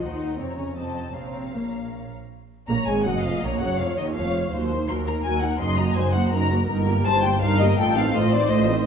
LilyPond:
<<
  \new Staff \with { instrumentName = "Violin section" } { \time 3/4 \key bes \minor \tempo 4 = 163 ees''4 des''4 a''4 | f''2~ f''8 r8 | r4 bes''8 aes''8 ges''8 f''8 | bes''8 ges''8 f''8 ees''8 f''4 |
r4 c'''8 bes''8 aes''8 ges''8 | c'''8 bes''8 aes''8 ges''8 bes''4 | \key ees \lydian r4 a''8 g''8 f''8 ees''8 | g''8 f''8 ees''8 d''8 ees''4 | }
  \new Staff \with { instrumentName = "Violin section" } { \time 3/4 \key bes \minor <c'' ges''>4 <des'' bes''>4 <ees'' a''>4 | <des'' bes''>2~ <des'' bes''>8 r8 | r4 des''4 ees''4 | des''2 des''4 |
c''4 bes'2 | ees''4 c''4 bes'4 | \key ees \lydian bes'4 c''4 bes'4 | a'4 c''2 | }
  \new Staff \with { instrumentName = "Viola section" } { \time 3/4 \key bes \minor ees'4 c'8 des'8 c'4 | c'4 bes4 r4 | r4 bes8 aes8 ges8 f8 | bes8 ges8 f8 ees8 f4 |
<ges ges'>8 <bes ees'>8 <ges ges'>8 <bes ees'>8 <ges ges'>8 <bes ees'>8 | <ges ees'>8 <bes ges'>8 <ges ees'>8 <bes ges'>8 <ges ees'>8 <bes ges'>8 | \key ees \lydian <g ees'>8 <bes g'>8 <g ees'>8 <bes g'>8 <g ees'>8 <bes g'>8 | <a f'>8 <c' ees'>8 <a f'>8 <c' ees'>8 <a f'>8 <c' ees'>8 | }
  \new Staff \with { instrumentName = "Cello section" } { \clef bass \time 3/4 \key bes \minor ees4 c8 des8 c4 | c4 bes,4 r4 | r4 bes,8 aes,8 ges,8 f,8 | bes,8 ges,8 f,8 ees,8 f,4 |
ees,4 ees,4 ees,4 | ges,4 ges,4 ges,4 | \key ees \lydian g,4 g,4 g,4 | a,4 a,4 a,4 | }
  \new Staff \with { instrumentName = "Double bass section" } { \clef bass \time 3/4 \key bes \minor ees,4 f,2 | bes,,2~ bes,,8 r8 | r4 bes,,8 aes,,8 ges,,8 f,,8 | bes,,8 ges,,8 f,,8 ees,8 f,,4 |
ees,4 ees,4 ees,4 | ges,,4 ges,,4 ges,,4 | \key ees \lydian g,,4 g,,4 g,,4 | a,,4 a,,4 a,,4 | }
>>